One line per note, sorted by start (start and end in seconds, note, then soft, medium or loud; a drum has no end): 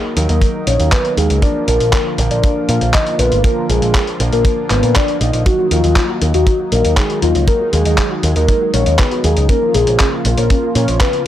0.00 1.39 D#3 medium
0.00 0.14 F#3 medium
0.00 1.39 F#3 medium
0.00 0.14 A#3 medium
0.00 7.44 A#3 medium
0.00 0.14 D#4 medium
0.00 1.39 D#4 medium
0.00 0.14 A#4 medium
0.17 0.26 D#2 medium
0.17 1.40 F#3 medium
0.17 1.40 A#3 medium
0.17 1.40 D#4 medium
0.17 1.40 A#4 loud
0.17 closed hi-hat medium
0.29 0.39 D#2 medium
0.29 0.60 A#4 medium
0.29 closed hi-hat medium
0.42 kick loud
0.42 closed hi-hat medium
0.67 0.77 A#1 medium
0.67 0.88 C#5 medium
0.67 closed hi-hat medium
0.80 0.90 D#2 medium
0.80 closed hi-hat medium
0.92 1.13 B4 medium
0.92 kick loud
0.92 clap loud
0.92 closed hi-hat medium
1.05 closed hi-hat soft
1.17 1.27 D#2 medium
1.17 1.38 G#4 medium
1.17 closed hi-hat medium
1.30 1.40 C#2 medium
1.30 closed hi-hat medium
1.42 5.42 D3 medium
1.42 5.42 F3 medium
1.42 2.15 F3 medium
1.42 2.15 A#3 medium
1.42 2.15 D4 medium
1.42 5.42 F4 medium
1.42 2.15 A#4 medium
1.42 1.63 D5 loud
1.42 kick loud
1.42 closed hi-hat medium
1.68 1.78 A#1 medium
1.68 1.99 A#4 loud
1.68 closed hi-hat medium
1.80 1.90 A#1 medium
1.80 closed hi-hat medium
1.93 kick loud
1.93 clap loud
1.93 closed hi-hat medium
2.18 2.28 A#1 loud
2.18 3.41 F3 medium
2.18 3.41 A#3 medium
2.18 3.41 D4 medium
2.18 3.41 A#4 medium
2.18 closed hi-hat medium
2.31 2.41 A#1 medium
2.31 2.62 D5 medium
2.31 closed hi-hat medium
2.43 kick loud
2.43 closed hi-hat medium
2.69 2.79 A#2 medium
2.69 2.89 F5 medium
2.69 closed hi-hat medium
2.81 2.91 A#1 medium
2.81 closed hi-hat medium
2.94 3.15 D#5 loud
2.94 kick loud
2.94 clap loud
2.94 closed hi-hat medium
3.06 closed hi-hat soft
3.19 3.29 A#1 loud
3.19 3.40 B4 medium
3.19 closed hi-hat medium
3.32 3.42 G#1 medium
3.32 closed hi-hat soft
3.44 4.17 F3 medium
3.44 4.17 A#3 medium
3.44 4.17 D4 medium
3.44 4.17 A#4 medium
3.44 3.65 A#4 loud
3.44 kick loud
3.44 closed hi-hat medium
3.69 3.79 A#1 medium
3.69 4.01 G#4 loud
3.69 closed hi-hat medium
3.82 3.92 A#1 medium
3.82 closed hi-hat soft
3.95 kick loud
3.95 clap loud
3.95 closed hi-hat medium
4.07 closed hi-hat soft
4.20 4.30 A#1 loud
4.20 5.43 F3 medium
4.20 5.43 A#3 medium
4.20 5.43 D4 medium
4.20 5.43 A#4 medium
4.20 closed hi-hat medium
4.33 4.42 A#1 medium
4.33 4.64 A#4 medium
4.33 closed hi-hat soft
4.45 kick loud
4.45 closed hi-hat medium
4.70 4.80 G#1 medium
4.70 4.91 B4 medium
4.70 clap medium
4.70 closed hi-hat medium
4.83 4.93 A#2 medium
4.83 closed hi-hat soft
4.96 5.16 D5 medium
4.96 kick loud
4.96 clap loud
4.96 closed hi-hat medium
5.08 closed hi-hat soft
5.21 5.31 A#1 medium
5.21 5.41 D#5 medium
5.21 closed hi-hat medium
5.33 5.43 A#1 medium
5.33 closed hi-hat soft
5.46 9.45 D#3 medium
5.46 9.45 F#3 medium
5.46 5.51 D#4 loud
5.46 9.45 D#4 medium
5.46 5.67 F#4 loud
5.46 kick loud
5.46 closed hi-hat medium
5.59 5.68 F#4 loud
5.71 5.81 D#2 medium
5.71 6.02 F4 loud
5.71 5.83 A#4 loud
5.71 closed hi-hat medium
5.84 5.94 D#2 medium
5.84 5.96 D#5 medium
5.84 closed hi-hat soft
5.96 6.05 D#4 medium
5.96 kick loud
5.96 clap loud
5.96 closed hi-hat medium
6.09 6.14 F#4 loud
6.22 6.32 D#2 loud
6.22 6.27 A#4 medium
6.22 closed hi-hat medium
6.34 6.44 D#2 medium
6.34 6.65 F#4 medium
6.34 6.40 D#5 loud
6.34 closed hi-hat medium
6.47 6.52 D#4 loud
6.47 kick loud
6.47 closed hi-hat medium
6.59 6.68 F#4 loud
6.72 6.82 A#1 medium
6.72 6.93 A#4 medium
6.72 6.81 A#4 loud
6.72 closed hi-hat medium
6.85 6.95 D#2 medium
6.85 6.97 D#5 medium
6.85 closed hi-hat medium
6.97 7.06 D#4 medium
6.97 7.18 G#4 medium
6.97 kick loud
6.97 clap loud
6.97 closed hi-hat medium
7.10 7.22 F#4 medium
7.10 closed hi-hat soft
7.22 7.32 D#2 medium
7.22 7.43 F4 medium
7.22 7.28 A#4 medium
7.22 closed hi-hat medium
7.35 7.45 C#2 medium
7.35 7.41 D#5 medium
7.35 closed hi-hat soft
7.48 9.47 G#3 medium
7.48 7.53 D#4 loud
7.48 7.68 A#4 loud
7.48 kick loud
7.48 closed hi-hat medium
7.60 7.69 F#4 loud
7.73 7.83 D#2 medium
7.73 8.04 G#4 medium
7.73 7.85 A#4 loud
7.73 closed hi-hat medium
7.85 7.95 D#2 medium
7.85 7.97 D#5 medium
7.85 closed hi-hat medium
7.98 8.07 D#4 medium
7.98 kick loud
7.98 clap loud
7.98 closed hi-hat medium
8.11 8.16 F#4 loud
8.23 8.33 D#2 medium
8.23 8.29 A#4 medium
8.23 closed hi-hat medium
8.36 8.46 D#2 medium
8.36 8.67 A#4 medium
8.36 8.41 D#5 loud
8.36 closed hi-hat soft
8.48 8.54 D#4 loud
8.48 kick loud
8.48 closed hi-hat medium
8.61 8.70 F#4 loud
8.74 8.84 A#1 medium
8.74 8.83 A#4 loud
8.74 8.94 C#5 medium
8.74 closed hi-hat medium
8.86 8.96 D#2 medium
8.86 8.98 D#5 medium
8.86 closed hi-hat medium
8.99 9.08 D#4 medium
8.99 9.20 B4 medium
8.99 kick loud
8.99 clap loud
8.99 closed hi-hat medium
9.11 9.23 F#4 medium
9.11 closed hi-hat soft
9.24 9.34 D#2 medium
9.24 9.45 G#4 medium
9.24 9.30 A#4 medium
9.24 closed hi-hat medium
9.37 9.47 C#2 medium
9.37 9.42 D#5 medium
9.37 closed hi-hat medium
9.49 11.27 C#3 medium
9.49 11.27 F3 medium
9.49 11.27 A#3 medium
9.49 9.55 C#4 loud
9.49 11.27 F4 medium
9.49 9.70 A#4 loud
9.49 kick loud
9.49 closed hi-hat medium
9.62 9.71 F4 loud
9.74 9.84 A#1 medium
9.74 10.06 G#4 loud
9.74 9.87 A#4 loud
9.74 closed hi-hat medium
9.87 9.97 A#1 medium
9.87 9.99 C#5 medium
9.87 closed hi-hat medium
10.00 10.09 C#4 medium
10.00 kick loud
10.00 clap loud
10.00 closed hi-hat medium
10.12 10.18 F4 loud
10.25 10.35 A#1 medium
10.25 10.30 A#4 medium
10.25 closed hi-hat medium
10.37 10.48 A#1 medium
10.37 10.69 A#4 medium
10.37 10.43 C#5 loud
10.37 closed hi-hat medium
10.50 10.56 C#4 loud
10.50 kick loud
10.50 closed hi-hat medium
10.63 10.72 F4 loud
10.75 10.85 A#2 medium
10.75 10.84 A#4 loud
10.75 10.96 C#5 medium
10.75 closed hi-hat medium
10.88 10.98 A#1 medium
10.88 11.00 C#5 medium
10.88 closed hi-hat medium
11.01 11.10 C#4 medium
11.01 11.21 B4 loud
11.01 kick loud
11.01 clap loud
11.01 closed hi-hat medium
11.13 11.25 F4 medium
11.13 closed hi-hat soft